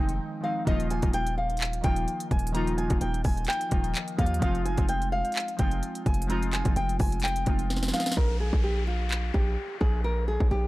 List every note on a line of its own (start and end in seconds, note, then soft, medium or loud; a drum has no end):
0.00 0.19 F1 loud
0.00 0.41 D#3 loud
0.00 0.42 F3 medium
0.00 0.43 G#3 medium
0.00 0.44 C4 medium
0.00 0.45 D#4 loud
0.00 0.40 G5 medium
0.09 closed hi-hat medium
0.41 0.63 D#3 medium
0.41 0.63 F3 medium
0.41 0.64 G#3 medium
0.41 0.65 C4 medium
0.41 0.63 F5 medium
0.45 0.65 D#4 medium
0.65 1.01 D#1 loud
0.65 0.97 D#3 loud
0.65 0.98 F3 medium
0.65 0.98 A#3 medium
0.65 0.99 D#4 loud
0.65 0.87 D#5 loud
0.65 kick loud
0.65 closed hi-hat medium
0.70 1.00 F4 loud
0.80 closed hi-hat medium
0.90 1.10 G#5 medium
0.90 closed hi-hat medium
1.01 1.81 D#1 loud
1.01 1.74 D#3 medium
1.01 1.74 F3 medium
1.01 1.75 A#3 medium
1.01 1.75 D#4 medium
1.01 kick loud
1.01 closed hi-hat medium
1.05 1.76 F4 medium
1.13 1.34 G5 medium
1.13 closed hi-hat medium
1.27 closed hi-hat medium
1.38 1.82 F5 medium
1.50 closed hi-hat soft
1.57 clap loud
1.57 closed hi-hat medium
1.65 closed hi-hat medium
1.73 closed hi-hat medium
1.81 2.07 D#1 loud
1.81 2.45 D#3 medium
1.81 2.45 F3 medium
1.81 2.46 A#3 medium
1.81 2.47 D#4 medium
1.81 2.28 G5 medium
1.81 kick loud
1.81 closed hi-hat medium
1.86 2.47 F4 medium
1.96 closed hi-hat medium
2.08 closed hi-hat medium
2.20 closed hi-hat medium
2.31 2.88 D#1 loud
2.31 2.51 G#5 medium
2.31 kick medium
2.31 closed hi-hat soft
2.39 closed hi-hat medium
2.47 closed hi-hat medium
2.52 2.85 D#3 loud
2.52 2.85 F3 medium
2.52 2.86 A#3 medium
2.52 2.86 D#4 medium
2.52 2.74 A#5 medium
2.52 closed hi-hat medium
2.57 2.87 F4 loud
2.67 closed hi-hat medium
2.78 2.98 G#5 medium
2.78 closed hi-hat medium
2.88 3.01 D#1 loud
2.88 3.61 D#3 medium
2.88 3.61 F3 medium
2.88 3.62 A#3 medium
2.88 3.63 D#4 medium
2.88 kick loud
2.88 closed hi-hat medium
2.92 3.63 F4 medium
3.01 3.24 D#1 loud
3.01 3.21 G5 medium
3.01 closed hi-hat medium
3.14 closed hi-hat medium
3.24 3.47 D#1 loud
3.24 3.44 G#5 medium
3.24 kick loud
3.24 open hi-hat medium
3.37 closed hi-hat soft
3.45 4.15 G5 loud
3.45 clap loud
3.45 closed hi-hat medium
3.52 closed hi-hat medium
3.61 closed hi-hat medium
3.69 3.94 D#1 loud
3.69 4.12 D#3 medium
3.69 4.12 F3 medium
3.69 4.13 A#3 medium
3.69 4.14 D#4 medium
3.69 kick loud
3.69 closed hi-hat medium
3.74 4.14 F4 medium
3.84 closed hi-hat medium
3.95 clap loud
3.95 closed hi-hat medium
4.08 closed hi-hat medium
4.16 4.41 D#2 loud
4.16 4.38 D#3 medium
4.16 4.38 F3 medium
4.16 4.39 A#3 medium
4.16 4.40 D#4 medium
4.16 4.38 F5 medium
4.16 kick medium
4.16 closed hi-hat soft
4.21 4.41 F4 medium
4.26 closed hi-hat medium
4.34 closed hi-hat medium
4.39 4.76 F1 loud
4.39 4.72 F3 loud
4.39 4.73 G#3 medium
4.39 4.73 C4 medium
4.39 4.74 D#4 medium
4.39 4.62 F5 medium
4.39 kick loud
4.39 closed hi-hat medium
4.44 4.74 F4 loud
4.55 closed hi-hat soft
4.65 4.85 G#5 medium
4.65 closed hi-hat medium
4.76 5.23 F1 loud
4.76 5.49 F3 medium
4.76 5.49 G#3 medium
4.76 5.50 C4 medium
4.76 5.51 D#4 medium
4.76 kick loud
4.76 closed hi-hat medium
4.81 5.51 F4 medium
4.89 5.09 G5 medium
4.89 closed hi-hat medium
5.02 closed hi-hat medium
5.12 5.56 F5 medium
5.25 closed hi-hat soft
5.32 clap loud
5.32 closed hi-hat medium
5.40 closed hi-hat medium
5.48 closed hi-hat medium
5.57 5.82 F1 loud
5.57 6.20 F3 medium
5.57 6.21 G#3 medium
5.57 6.21 C4 medium
5.57 6.22 D#4 medium
5.57 6.03 G5 medium
5.57 kick loud
5.57 closed hi-hat medium
5.62 6.22 F4 medium
5.71 closed hi-hat medium
5.83 closed hi-hat medium
5.95 closed hi-hat medium
6.06 6.63 F1 loud
6.06 6.26 G#5 medium
6.06 kick medium
6.06 closed hi-hat soft
6.14 closed hi-hat medium
6.22 closed hi-hat medium
6.27 6.60 F3 medium
6.27 6.60 G#3 medium
6.27 6.61 C4 medium
6.27 6.61 D#4 medium
6.27 6.49 A#5 medium
6.27 closed hi-hat medium
6.32 6.62 F4 loud
6.42 closed hi-hat medium
6.53 6.73 G#5 medium
6.53 clap loud
6.53 closed hi-hat medium
6.63 6.76 F1 loud
6.63 7.36 F3 medium
6.63 7.37 G#3 medium
6.63 7.37 C4 medium
6.63 7.38 D#4 medium
6.63 kick loud
6.63 closed hi-hat medium
6.68 7.39 F4 medium
6.76 6.99 F1 loud
6.76 6.96 G5 medium
6.76 closed hi-hat medium
6.89 closed hi-hat medium
6.99 7.45 F1 loud
6.99 7.20 G#5 medium
6.99 kick loud
6.99 open hi-hat medium
7.12 closed hi-hat medium
7.20 7.90 G5 medium
7.20 clap loud
7.20 closed hi-hat medium
7.28 closed hi-hat medium
7.36 closed hi-hat medium
7.45 7.92 F1 loud
7.45 7.87 F3 medium
7.45 7.88 G#3 medium
7.45 7.88 C4 medium
7.45 7.89 D#4 medium
7.45 kick loud
7.45 closed hi-hat medium
7.49 7.89 F4 medium
7.59 closed hi-hat medium
7.70 snare medium
7.70 closed hi-hat medium
7.76 snare medium
7.83 snare medium
7.83 closed hi-hat medium
7.88 8.13 F3 medium
7.88 snare medium
7.93 8.14 G#3 medium
7.93 8.15 C4 medium
7.93 8.15 D#4 medium
7.93 8.16 F4 medium
7.93 8.13 F5 medium
7.93 snare medium
7.93 closed hi-hat soft
8.00 snare medium
8.00 closed hi-hat medium
8.06 snare loud
8.06 closed hi-hat medium
8.12 snare loud
8.12 closed hi-hat medium
8.17 8.51 A#1 loud
8.17 8.37 A#4 medium
8.17 kick loud
8.17 downlifter medium
8.40 8.60 G#4 medium
8.53 9.31 A#1 loud
8.53 kick medium
8.64 8.83 G4 medium
8.87 9.31 F4 medium
9.11 clap loud
9.34 9.57 A#1 loud
9.34 9.78 G4 medium
9.34 kick loud
9.81 10.38 A#1 loud
9.81 10.00 G#4 medium
9.81 kick medium
10.04 10.24 A#4 medium
10.28 10.48 G#4 medium
10.40 10.51 A#1 loud
10.40 kick loud
10.51 10.68 A#1 loud
10.51 10.68 G4 medium